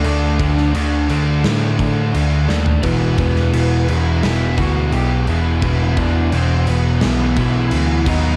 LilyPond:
<<
  \new Staff \with { instrumentName = "Lead electric guitar" } { \time 4/4 \key d \mixolydian \tempo 4 = 86 <d' d''>4 r2. | <b b'>8 <b b'>4 <e' e''>8 <e' e''>8 <fis' fis''>8 <g' g''>8 <e' e''>8~ | <e' e''>8 <d' d''>8 <c' c''>8 <b b'>4 <e' e''>4 <dis' dis''>8 | }
  \new Staff \with { instrumentName = "Distorted electric guitar" } { \clef bass \time 4/4 \key d \mixolydian <d a d'>8 <d a d'>8 <d a d'>8 <d a d'>8 <d a d'>8 <d a d'>8 <d a d'>8 <d a d'>8 | <e, b, e>8 <e, b, e>8 <e, b, e>8 <e, b, e>8 <e, b, e>8 <e, b, e>8 <e, b, e>8 <e, b, e>8 | <e, b, e>8 <e, b, e>8 <e, b, e>8 <e, b, e>8 <e, b, e>8 <e, b, e>8 <e, b, e>8 <b, fis b>8 | }
  \new Staff \with { instrumentName = "Distorted electric guitar" } { \clef bass \time 4/4 \key d \mixolydian <d a d'>8 <d a d'>8 <d a d'>8 <d a d'>8 <d a d'>8 <d a d'>8 <d a d'>8 <d a d'>8 | <e, b, e>8 <e, b, e>8 <e, b, e>8 <e, b, e>8 <e, b, e>8 <e, b, e>8 <e, b, e>8 <e, b, e>8 | <e, b, e>8 <e, b, e>8 <e, b, e>8 <e, b, e>8 <e, b, e>8 <e, b, e>8 <e, b, e>8 <b, fis b>8 | }
  \new Staff \with { instrumentName = "Overdriven electric guitar" } { \clef bass \time 4/4 \key d \mixolydian <d a d'>4. <d a d'>2 r8 | <e, b, e>2 <e, b, e>2 | <e, b, e>2 <e, b, e>4. <b, fis b>8 | }
  \new Staff \with { instrumentName = "Picked electric bass" } { \clef bass \time 4/4 \key d \mixolydian d,8 d,8 d,8 d,8 a,8 a,8 d,8 dis,8 | e,,8 e,,8 e,,8 e,,8 e,,8 d,8 b,,8 e,,8 | e,,8 e,,8 e,,8 e,,8 b,,8 b,,8 d,8 dis,8 | }
  \new DrumStaff \with { instrumentName = "Drums" } \drummode { \time 4/4 cymc8 <cymc bd>16 sn16 cymc8 cymc8 <cymc sn>8 <cymc bd>8 cymc8 sn16 tomfh16 | <cymc bd>8 <cymc bd>16 sn16 cymc8 cymc8 <cymc sn>8 <cymc bd>8 cymc8 cymc8 | <cymc bd>8 <cymc bd>8 cymc8 cymc8 <cymc sn>8 <cymc bd>8 cymc8 <cymc bd>8 | }
>>